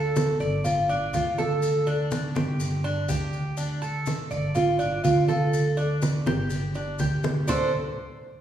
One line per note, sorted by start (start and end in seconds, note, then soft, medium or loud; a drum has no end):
0.00 0.34 D2 medium
0.00 0.39 A4 medium
0.16 high conga medium
0.16 maracas medium
0.40 1.10 G1 medium
0.40 0.64 D5 medium
0.40 high conga soft
0.40 maracas soft
0.64 0.88 F4 medium
0.64 high conga soft
0.64 low conga medium
0.64 maracas medium
0.89 1.13 D4 medium
0.89 high conga soft
0.89 maracas soft
1.13 2.29 D2 medium
1.13 1.38 F4 medium
1.13 high conga medium
1.13 maracas medium
1.38 1.86 A4 medium
1.38 high conga medium
1.38 maracas soft
1.62 high conga soft
1.62 maracas medium
1.87 2.34 D4 medium
1.87 high conga soft
1.87 maracas soft
2.11 high conga loud
2.11 maracas medium
2.35 3.05 G1 medium
2.35 2.83 G4 medium
2.35 high conga medium
2.35 maracas soft
2.60 high conga soft
2.60 maracas medium
2.84 3.08 D4 medium
2.84 high conga soft
2.84 maracas soft
3.08 4.24 D2 medium
3.08 3.56 G4 medium
3.08 high conga medium
3.08 maracas medium
3.33 maracas soft
3.57 3.81 D4 medium
3.57 high conga soft
3.57 maracas medium
3.82 4.29 A4 medium
3.82 high conga soft
3.82 maracas soft
4.06 high conga medium
4.06 maracas medium
4.31 5.00 G1 medium
4.31 4.55 D5 medium
4.31 high conga soft
4.31 maracas soft
4.55 4.79 F4 medium
4.55 high conga soft
4.55 low conga medium
4.55 maracas medium
4.79 5.03 D4 medium
4.79 high conga soft
4.79 maracas soft
5.04 6.20 D2 medium
5.04 5.28 F4 medium
5.04 high conga medium
5.04 maracas medium
5.28 5.76 A4 medium
5.28 high conga medium
5.28 maracas soft
5.53 high conga soft
5.53 maracas medium
5.77 6.25 D4 medium
5.77 high conga soft
5.77 maracas soft
6.02 high conga medium
6.02 maracas medium
6.26 6.95 G1 medium
6.26 6.74 G4 medium
6.26 high conga medium
6.26 maracas soft
6.50 high conga soft
6.50 maracas medium
6.75 6.99 D4 medium
6.75 high conga soft
6.75 maracas soft
6.99 7.42 D2 medium
6.99 7.47 G4 medium
6.99 high conga medium
6.99 maracas medium
7.23 high conga loud
7.23 maracas soft
7.48 7.71 D2 medium
7.48 7.71 D4 medium
7.48 7.71 A4 medium
7.48 7.71 C5 loud
7.48 low conga loud
7.48 maracas loud